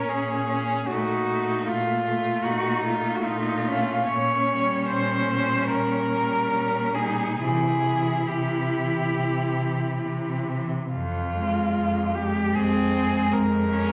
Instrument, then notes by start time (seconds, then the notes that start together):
cello
Already playing: C#4 A#4
0.08 A#2 G#4
0.47 C#4
0.87 A#2 A3 D#4 F#4
1.30 A3
1.68 A#2 F4
2.07 A3
2.44 A#2 D#4 F#4
2.84 A3 F4
3.16 F#4
3.22 A#2 D#4 F4
3.68 A3 C#4
4.08 A#2 C#5
4.51 G3
4.89 A#2 C5
5.32 G3
5.70 A#2 A#4
6.12 G3
6.54 A#2 C#4
6.94 G3 D#4 G#4
7.37 C3 E3 E4 G#4
7.83 E3
8.27 C3 G4
8.72 E3
9.14 C3
9.57 E3
10.02 C3
10.48 E3
10.92 F2 F4
11.34 G#3
11.75 F2
12.15 G#3 G4
12.54 F2 C4 G#4
12.97 G#3
13.33 F2 G#3 A#4
13.73 G#3 C#4